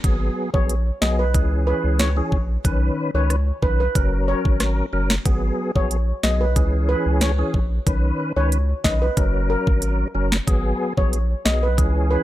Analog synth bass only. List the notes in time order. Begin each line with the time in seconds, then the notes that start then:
0.04 G#1
0.54 A#1
1.02 B1
1.34 C#2
1.84 C#2
2.32 A#1
2.65 B1
3.14 C#2
3.62 B1
3.95 F#1
4.45 G#1
4.93 F#1
5.26 G#1
5.76 A#1
6.23 B1
6.56 C#2
7.06 C#2
7.54 A#1
7.87 B1
8.36 C#2
8.84 B1
9.17 F#1
9.67 G#1
10.15 F#1
10.47 G#1
10.98 A#1
11.45 B1
11.78 C#2